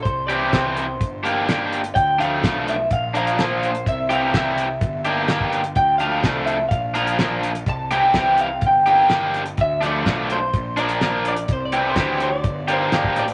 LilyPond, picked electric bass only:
\new Staff \with { instrumentName = "Picked electric bass" } { \clef bass \time 4/4 \key c \mixolydian \tempo 4 = 126 c,4 c,4 g,,2 | d,4 b,,4 bes,,2 | c,4 c,4 g,,2 | d,4 c,4 bes,,2 |
c,4 c,4 g,,2 | d,4 b,,4 bes,,2 | c,4 d,4 g,,4 g,,8 a,,8 | }